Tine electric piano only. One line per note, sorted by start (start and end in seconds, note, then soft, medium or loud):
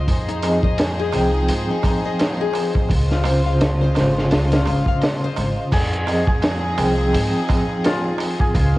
0.43 0.66 F3 medium
0.43 0.66 C4 medium
0.43 0.66 G#4 medium
0.43 0.66 D#5 loud
1.13 2.88 F3 medium
1.13 2.89 C4 medium
1.13 2.89 G#4 medium
1.13 2.89 G5 loud
3.25 3.92 C#3 medium
3.25 3.92 C#4 medium
3.25 3.93 F4 medium
3.25 3.93 C5 loud
3.96 5.71 C#3 medium
3.96 5.71 C#4 medium
3.96 5.72 F4 medium
3.96 5.72 C5 loud
6.08 6.30 F3 medium
6.08 6.31 C4 medium
6.08 6.31 G#4 medium
6.08 6.31 D#5 loud
6.77 8.52 F3 medium
6.77 8.53 C4 medium
6.77 8.53 G#4 medium
6.77 8.54 G5 loud